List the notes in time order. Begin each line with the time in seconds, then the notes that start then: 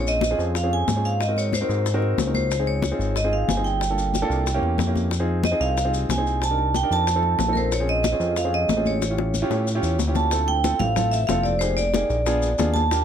Already playing: A#1
0.00 C4 C#4 F4 G#4
0.05 D#5, high conga, maracas
0.21 high bongo, high conga, maracas
0.31 C4 C#4 F4 G#4
0.38 F2, high conga, maracas
0.55 F5, high bongo, high conga, maracas
0.63 C4 C#4 F4 G#4
0.71 G#5, high conga
0.88 G#2, high bongo, low bongo, high conga, maracas
0.96 C4 C#4 F4 G#4
1.05 F5, maracas
1.20 D#5, high bongo, high conga, maracas
1.28 C4 D#4 F#4 A#4
1.36 C#5, high bongo, high conga, maracas
1.53 C5, high bongo, high conga, maracas
1.61 C4 D#4 F#4 A#4
1.69 G#2, high conga, maracas
1.86 high bongo, high conga, maracas
1.94 C4 D#4 F#4 A#4
2.02 high bongo, high conga
2.18 C#2, high bongo, low bongo, high conga, maracas
2.27 C4 D#4 F#4 A#4
2.34 C5, high bongo, high conga, maracas
2.50 high bongo, high conga, maracas
2.59 C4 D#4 F4 G#4
2.67 C#5, high conga
2.82 high bongo, high conga, maracas
2.91 C4 D#4 F4 G#4
2.99 G#1, high conga, maracas
3.15 D#5, high bongo, high conga, maracas
3.24 C4 D#4 F4 G#4
3.32 F5, high conga
3.48 G1 G#5, high bongo, low bongo, high conga, maracas
3.57 C4 D#4 F4 G#4
3.64 G5, maracas
3.81 high bongo, high conga, maracas
3.90 A#3 D4 F4 A4
3.98 high bongo, high conga, maracas
4.14 high bongo, high conga, maracas
4.22 A#3 D4 F4 A4
4.30 C2, high conga, maracas
4.46 high bongo, high conga, maracas
4.54 A#3 C#4 E4 G4
4.62 E2, high bongo, high conga
4.78 F2, high bongo, low bongo, high conga, maracas
4.87 A#3 C#4 E4 G4
4.95 high bongo, high conga, maracas
5.11 high bongo, high conga, maracas
5.20 C4 D#4 F4 G#4
5.28 high conga
5.44 D#5, high bongo, high conga, maracas
5.51 C4 D#4 F4 G#4
5.60 C2 F5, high conga, maracas
5.78 high bongo, high conga, maracas
5.85 C4 D#4 F4 G#4
5.93 high conga, maracas
6.09 C2 G#5, high bongo, low bongo, high conga, maracas
6.18 C4 D#4 F4 G#4
6.27 maracas
6.42 A5, high bongo, high conga, maracas
6.50 D4 D#4 G4 A#4
6.58 high bongo, high conga
6.74 G5, high bongo, high conga, maracas
6.83 D4 D#4 G4 A#4
6.91 F2 A5, high conga, maracas
7.07 high bongo, high conga, maracas
7.15 C4 D#4 F4 A4
7.23 high bongo, high conga
7.39 A#1, high bongo, low bongo, high conga, maracas
7.48 C4 D#4 F4 A4
7.53 A#4, high bongo, high conga, maracas
7.57 C5
7.71 C#5, high bongo, high conga, maracas
7.80 C4 C#4 F4 G#4
7.88 D#5, high conga
8.04 high bongo, high conga, maracas
8.12 C4 C#4 F4 G#4
8.20 F2, high conga, maracas
8.36 F5, high bongo, high conga, maracas
8.44 C4 C#4 F4 G#4
8.53 D#5, high conga
8.68 A1, high bongo, low bongo, high conga, maracas
8.77 C4 C#4 F4 G#4
8.86 C#5, high conga, maracas
9.02 high bongo, high conga, maracas
9.10 C#4 E4 F4 G4
9.18 high bongo, high conga
9.34 high conga, maracas
9.42 C#4 E4 F4 G4
9.50 A2, high bongo, high conga, maracas
9.67 high conga, maracas
9.75 C#4 E4 F4 G4
9.83 E2, high conga, maracas
9.99 D2, low bongo, high conga, maracas
10.07 C#4 E4 F4 G4
10.15 A5, low bongo, high conga, maracas
10.31 C4 E4 F4 A4, high bongo, high conga, maracas
10.48 G5, high conga
10.64 C4 E4 F4 A4, high bongo, high conga, maracas
10.79 A1 F5, high conga, low conga, maracas
10.96 C4 E4 F4 A4, high bongo, high conga, low conga, maracas
11.12 E5, high conga, maracas
11.27 F1 C4 E4 F4 A4 F5, high bongo, low bongo, high conga, maracas
11.43 D5, high conga, maracas
11.59 A#3 D#4 G4 G#4 C5, high bongo, high conga, maracas
11.77 D5, high bongo, high conga, maracas
11.94 A#3 D#4 G4 G#4, high bongo, high conga, maracas
12.10 A#1, high bongo, high conga, maracas
12.26 B3 D4 F4 G#4, high bongo, high conga, maracas
12.42 high bongo, high conga, maracas
12.58 D#2 B3 D4 F4 G#4, high bongo, low bongo, high conga, maracas
12.74 A5, high conga, maracas
12.91 A#3 D4 F4 G4, high bongo, maracas